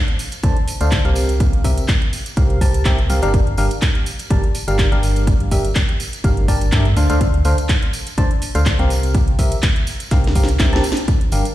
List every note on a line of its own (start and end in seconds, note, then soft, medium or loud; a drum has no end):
0.08 closed hi-hat soft
0.19 open hi-hat medium
0.19 tambourine loud
0.32 closed hi-hat soft
0.32 tambourine medium
0.43 0.53 D2 medium
0.43 0.56 D3 medium
0.43 0.56 D4 medium
0.43 0.56 A4 medium
0.43 0.56 C5 medium
0.43 0.56 A5 medium
0.43 kick loud
0.43 closed hi-hat medium
0.43 tambourine soft
0.56 closed hi-hat soft
0.68 open hi-hat loud
0.68 tambourine medium
0.81 1.02 D2 medium
0.81 1.02 D3 medium
0.81 1.02 D4 medium
0.81 1.02 A4 medium
0.81 1.02 C5 medium
0.81 1.02 F5 loud
0.81 closed hi-hat soft
0.81 tambourine medium
0.92 kick loud
0.92 clap loud
0.92 closed hi-hat soft
1.05 1.62 C2 medium
1.05 1.62 C3 medium
1.05 1.62 C4 medium
1.05 1.62 G4 medium
1.05 1.62 A#4 medium
1.05 1.62 F5 medium
1.05 closed hi-hat soft
1.15 open hi-hat medium
1.15 tambourine medium
1.29 closed hi-hat medium
1.29 tambourine medium
1.40 kick loud
1.40 closed hi-hat soft
1.40 tambourine soft
1.53 closed hi-hat soft
1.64 1.81 C2 loud
1.64 1.83 C3 medium
1.64 1.84 C4 medium
1.64 1.83 G4 medium
1.64 1.84 A#4 medium
1.64 1.84 E5 medium
1.64 kick medium
1.64 open hi-hat loud
1.64 tambourine medium
1.78 closed hi-hat soft
1.78 tambourine medium
1.88 kick loud
1.88 clap loud
1.88 closed hi-hat soft
2.02 closed hi-hat soft
2.13 open hi-hat medium
2.13 tambourine medium
2.26 closed hi-hat soft
2.26 tambourine medium
2.36 2.59 C2 medium
2.36 2.59 C3 medium
2.36 2.59 C4 medium
2.36 2.59 G4 medium
2.36 2.59 A#4 medium
2.36 2.59 F5 medium
2.36 kick loud
2.36 closed hi-hat soft
2.36 tambourine soft
2.50 closed hi-hat soft
2.61 2.83 C2 loud
2.61 2.83 C3 medium
2.61 2.83 C4 medium
2.61 2.83 G4 medium
2.61 2.83 A#4 medium
2.61 2.83 A5 medium
2.61 kick medium
2.61 open hi-hat loud
2.61 tambourine medium
2.74 closed hi-hat soft
2.74 tambourine soft
2.85 3.07 C2 medium
2.85 2.98 C3 medium
2.85 2.98 C4 medium
2.85 2.98 G4 medium
2.85 2.98 A#4 medium
2.85 2.98 E5 medium
2.85 kick loud
2.85 clap loud
2.85 closed hi-hat soft
2.85 tambourine soft
2.98 closed hi-hat soft
3.10 3.20 C2 loud
3.10 3.21 C4 medium
3.10 3.21 G4 medium
3.10 3.21 A#4 medium
3.10 3.21 F5 medium
3.10 open hi-hat loud
3.10 tambourine loud
3.22 3.56 G1 medium
3.22 3.41 G3 medium
3.22 3.41 D4 medium
3.22 3.41 G4 medium
3.22 3.41 A#4 medium
3.22 3.41 F5 loud
3.22 closed hi-hat soft
3.22 tambourine medium
3.34 kick loud
3.34 closed hi-hat medium
3.34 tambourine soft
3.47 closed hi-hat soft
3.57 3.68 G1 loud
3.57 3.71 G3 medium
3.57 3.71 D4 medium
3.57 3.71 G4 medium
3.57 3.71 A#4 medium
3.57 3.71 F5 medium
3.57 open hi-hat loud
3.57 tambourine medium
3.71 closed hi-hat soft
3.71 tambourine soft
3.81 kick loud
3.81 clap loud
3.81 closed hi-hat medium
3.81 tambourine soft
3.95 closed hi-hat soft
4.06 open hi-hat medium
4.06 tambourine medium
4.19 closed hi-hat medium
4.19 tambourine soft
4.30 4.40 G1 loud
4.30 4.43 G3 medium
4.30 4.43 D4 medium
4.30 4.43 G4 medium
4.30 4.43 A#4 medium
4.30 4.43 A5 medium
4.30 kick loud
4.30 closed hi-hat soft
4.44 closed hi-hat soft
4.55 open hi-hat loud
4.55 tambourine medium
4.68 4.89 G1 medium
4.68 4.89 G3 medium
4.68 4.89 D4 medium
4.68 4.89 G4 medium
4.68 4.89 A#4 medium
4.68 4.89 F5 loud
4.68 closed hi-hat soft
4.68 tambourine medium
4.79 kick loud
4.79 clap loud
4.79 closed hi-hat soft
4.79 tambourine soft
4.92 5.49 G1 medium
4.92 5.49 G3 medium
4.92 5.49 D4 medium
4.92 5.49 G4 medium
4.92 5.49 A#4 medium
4.92 5.49 F5 medium
4.92 closed hi-hat soft
5.03 open hi-hat medium
5.03 tambourine medium
5.16 closed hi-hat medium
5.16 tambourine medium
5.27 kick loud
5.27 closed hi-hat medium
5.27 tambourine soft
5.40 closed hi-hat soft
5.51 5.68 G1 medium
5.51 5.71 G3 medium
5.51 5.71 D4 medium
5.51 5.71 G4 medium
5.51 5.71 A#4 medium
5.51 5.71 E5 medium
5.51 kick medium
5.51 open hi-hat loud
5.51 tambourine medium
5.65 closed hi-hat soft
5.65 tambourine soft
5.75 kick loud
5.75 clap loud
5.75 closed hi-hat soft
5.75 tambourine soft
5.89 closed hi-hat soft
6.00 open hi-hat medium
6.00 tambourine medium
6.13 closed hi-hat medium
6.13 tambourine soft
6.24 6.46 G1 loud
6.24 6.46 G3 medium
6.24 6.46 D4 medium
6.24 6.46 G4 medium
6.24 6.46 A#4 medium
6.24 6.46 F5 medium
6.24 kick loud
6.24 closed hi-hat soft
6.24 tambourine soft
6.37 closed hi-hat soft
6.48 6.70 G1 loud
6.48 6.70 G3 medium
6.48 6.70 D4 medium
6.48 6.70 G4 medium
6.48 6.70 A#4 medium
6.48 6.70 A5 medium
6.48 kick medium
6.48 open hi-hat loud
6.48 tambourine medium
6.61 closed hi-hat soft
6.61 tambourine soft
6.72 6.94 G2 medium
6.72 6.85 D3 medium
6.72 6.85 D4 medium
6.72 6.85 G4 medium
6.72 6.85 A#4 medium
6.72 6.85 E5 loud
6.72 kick loud
6.72 clap loud
6.72 closed hi-hat soft
6.72 tambourine soft
6.85 closed hi-hat soft
6.96 7.07 D2 loud
6.96 7.08 D3 medium
6.96 7.08 D4 medium
6.96 7.08 A4 medium
6.96 7.08 C5 medium
6.96 7.08 F5 medium
6.96 open hi-hat medium
6.96 tambourine medium
7.09 7.43 D2 medium
7.09 7.28 D3 medium
7.09 7.28 D4 medium
7.09 7.28 A4 medium
7.09 7.28 C5 medium
7.09 7.28 F5 loud
7.09 closed hi-hat medium
7.09 tambourine soft
7.21 kick loud
7.21 closed hi-hat medium
7.21 tambourine soft
7.34 closed hi-hat soft
7.45 7.55 D2 loud
7.45 7.58 D3 medium
7.45 7.58 D4 medium
7.45 7.58 A4 medium
7.45 7.58 C5 medium
7.45 7.58 F5 medium
7.45 open hi-hat loud
7.45 tambourine medium
7.58 closed hi-hat medium
7.58 tambourine soft
7.69 kick loud
7.69 clap loud
7.69 closed hi-hat medium
7.69 tambourine soft
7.82 closed hi-hat soft
7.93 open hi-hat medium
7.93 tambourine medium
8.07 closed hi-hat medium
8.07 tambourine soft
8.18 8.28 D2 medium
8.18 8.30 D3 medium
8.18 8.30 D4 medium
8.18 8.30 A4 medium
8.18 8.30 C5 medium
8.18 8.30 A5 loud
8.18 kick loud
8.18 closed hi-hat medium
8.18 tambourine soft
8.31 closed hi-hat soft
8.42 open hi-hat loud
8.42 tambourine medium
8.55 8.77 D2 medium
8.55 8.76 D3 medium
8.55 8.76 D4 medium
8.55 8.76 A4 medium
8.55 8.76 C5 medium
8.55 8.76 F5 loud
8.55 closed hi-hat medium
8.55 tambourine medium
8.66 kick loud
8.66 clap loud
8.66 closed hi-hat soft
8.66 tambourine soft
8.79 9.36 C2 medium
8.79 9.36 C3 medium
8.79 9.36 C4 medium
8.79 9.36 G4 medium
8.79 9.36 A#4 medium
8.79 9.36 F5 medium
8.79 closed hi-hat soft
8.90 open hi-hat medium
8.90 tambourine medium
9.03 closed hi-hat medium
9.03 tambourine medium
9.14 kick loud
9.14 closed hi-hat medium
9.14 tambourine soft
9.28 closed hi-hat soft
9.39 9.55 C2 loud
9.39 9.58 C3 medium
9.39 9.58 C4 medium
9.39 9.58 G4 medium
9.39 9.58 A#4 medium
9.39 9.58 E5 medium
9.39 kick medium
9.39 open hi-hat loud
9.39 tambourine medium
9.52 closed hi-hat medium
9.52 tambourine medium
9.63 kick loud
9.63 clap loud
9.63 closed hi-hat medium
9.63 tambourine soft
9.76 closed hi-hat soft
9.87 open hi-hat medium
9.87 tambourine loud
10.00 closed hi-hat medium
10.00 tambourine medium
10.11 10.33 C2 loud
10.11 10.33 C3 medium
10.11 10.33 C4 medium
10.11 10.33 G4 medium
10.11 10.33 A#4 medium
10.11 10.33 F5 medium
10.11 kick loud
10.11 snare medium
10.11 closed hi-hat medium
10.11 tambourine soft
10.24 snare medium
10.24 closed hi-hat soft
10.35 10.57 C2 medium
10.35 10.48 C3 medium
10.35 10.48 C4 medium
10.35 10.48 G4 medium
10.35 10.48 A#4 medium
10.35 10.48 F5 medium
10.35 kick medium
10.35 open hi-hat loud
10.35 tambourine medium
10.43 snare medium
10.48 closed hi-hat medium
10.48 tambourine medium
10.59 10.70 C2 medium
10.59 10.71 C3 medium
10.59 10.71 C4 medium
10.59 10.71 G4 medium
10.59 10.71 A#4 medium
10.59 10.71 E5 loud
10.59 kick loud
10.59 snare medium
10.59 clap loud
10.59 closed hi-hat medium
10.59 tambourine soft
10.73 10.81 C2 loud
10.73 10.83 C3 medium
10.73 10.83 C4 medium
10.73 10.83 G4 medium
10.73 10.83 A#4 medium
10.73 10.83 A5 medium
10.73 snare medium
10.73 closed hi-hat soft
10.84 open hi-hat medium
10.84 tambourine medium
10.92 snare loud
10.96 closed hi-hat medium
10.96 tambourine medium
11.08 kick loud
11.08 closed hi-hat medium
11.08 tambourine soft
11.21 closed hi-hat soft
11.32 11.42 G1 loud
11.32 11.45 G3 medium
11.32 11.45 D4 medium
11.32 11.45 G4 medium
11.32 11.45 A#4 medium
11.32 11.45 F5 medium
11.32 open hi-hat loud
11.32 tambourine medium
11.45 closed hi-hat medium
11.45 tambourine medium